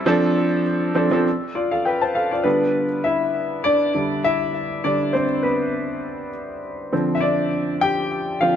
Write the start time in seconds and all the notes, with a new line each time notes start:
0.06 F3 C4 D4 A4
0.95 F3 C4 D4 A4
1.11 F3 C4 D4 A4
1.55 F4 D5
1.71 A4 F5
1.85 B4 G5
2.01 C5 A5
2.15 A4 F5
2.31 F4 D5
2.44 D3 G3 B3 D4 B4
3.04 E4 E5
3.64 D4 D5
3.95 D3 G3 D4
4.24 E4 E5
4.84 D3 G3 D4 D5
5.13 C4 C5
5.43 B3 B4
6.92 D3 F3 C4
7.15 E5
7.21 D4 D5
7.81 G4 G5
8.41 D3 F3 C4 F4 F5